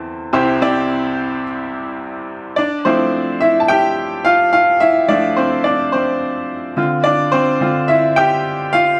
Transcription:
Already playing: E2 E3 C4 E4 A4 C5
0.33 C2 C3 C4 E4 G4 C5
0.62 C4 E4 G4 D5
2.56 D4 D5
2.85 F3 A3 C4 E4 C5
3.41 E4 E5
3.60 A5
3.68 G4 G5
4.25 F4 F5
4.53 F4 F5
4.80 E4 E5
5.08 F3 A3 D4 E4 D5
5.36 C4 C5
5.64 D4 D5
5.92 C4 C5
6.77 D3 C4 F4
7.04 D4 D5
7.32 C4 C5
7.61 D3 C4 F4
7.88 E4 E5
8.16 G4 G5
8.73 F4 F5

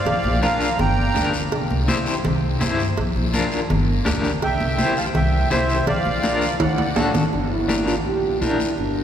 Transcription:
Already playing: D5 F5
0.05 A#1, cowbell, low conga, long guiro
0.24 A#1, high conga
0.42 D4 F4 A#4 F5 A#5, high conga, short guiro
0.61 short guiro
0.79 G1 G5 A#5, cowbell, low conga, long guiro
1.15 D2 D4 G4 A#4, high conga, low timbale, short guiro
1.34 short guiro
1.52 C2, cowbell, long guiro
1.70 C2, high conga
1.88 E4 G4 C5, high conga, short guiro
2.06 short guiro
2.24 C2, cowbell, low conga, long guiro
2.61 G2 E4 G4 C5, high conga, low timbale, short guiro
2.79 short guiro
2.97 A#1, cowbell, long guiro
3.16 A#1
3.33 D4 F4 A#4, high conga, short guiro
3.52 short guiro
3.70 G1, cowbell, low conga, long guiro
4.05 D2 D4 G4 A#4, high conga, low timbale, short guiro
4.24 short guiro
4.42 C2 E5 G5, cowbell, long guiro
4.60 C2
4.78 E4 G4 C5, high conga, short guiro
4.97 F5 A5, short guiro
5.15 C2 E5 G5, cowbell, low conga, long guiro
5.51 C2 E4 G4 C5 E5, high conga, low timbale, short guiro
5.69 short guiro
5.87 A#1 D5 F5, cowbell, low conga, long guiro
6.05 A#1, high conga
6.23 D4 F4 A#4, high conga, short guiro
6.41 short guiro
6.60 D2 D5 F#5, cowbell, low conga, high timbale, long guiro
6.78 high conga, high timbale
6.96 A1 D4 F#4 A4, high conga, low timbale, short guiro
7.14 low conga, low timbale, short guiro
7.33 G1 D4, high conga, long guiro
7.52 E4
7.68 D4 G4 A#4, high conga, short guiro
7.87 F4, short guiro
8.05 A#1 G4, high conga, long guiro
8.41 A#1 D4 E4 G4 A#4, high conga, short guiro
8.60 short guiro
8.78 G1 D4, high conga, long guiro

